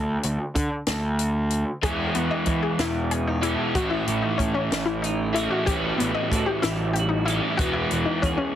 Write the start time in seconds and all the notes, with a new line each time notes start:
Already playing: D2
0.23 D2, closed hi-hat
0.55 D3, kick, closed hi-hat
0.87 D2, snare, closed hi-hat
1.19 closed hi-hat
1.50 closed hi-hat
1.82 E2 E3 G#3 B3 E4 F#4 G#4, kick, closed hi-hat
2.00 G#4
2.15 E2 E3 B3, closed hi-hat
2.31 D#5
2.46 E3, kick, closed hi-hat
2.63 G#4
2.79 E2 B2 E4, snare, closed hi-hat
3.11 C#4 G#4, closed hi-hat
3.27 D#4
3.42 E3 G#3 B3 E4 A4, closed hi-hat
3.75 A1 A2 E3 A3 C#4 E4 F#4, kick, closed hi-hat
3.90 E4 G#4
4.07 A1 E3, closed hi-hat
4.22 D#4
4.38 A2 C#4, kick, closed hi-hat
4.54 C#4
4.71 A1 E3, snare, closed hi-hat
4.86 E4
5.02 D#4, closed hi-hat
5.33 A2 E3 A3 C#4 E4, closed hi-hat
5.38 G#4
5.50 F#4
5.65 A1 A2 E3 G3 C#4 E4 G4, kick, closed hi-hat
5.70 A2 E3 C#4 F#4 B4
5.98 A1 B3, closed hi-hat
6.03 E3
6.15 D#5
6.31 A2, kick, closed hi-hat
6.35 F#4
6.46 G4
6.62 A1 E3 E4, snare, closed hi-hat
6.93 G4, closed hi-hat
6.99 F#4
7.09 D#4
7.25 A2 E3 G3 C#4 E4, closed hi-hat
7.30 A4
7.57 E1 E2 E3 G#3 B3 E4 F#4 B4, kick, closed hi-hat
7.73 E4
7.91 E1 E3, closed hi-hat
8.05 D#4
8.22 E2 C#4 G#4, kick, closed hi-hat
8.37 C#4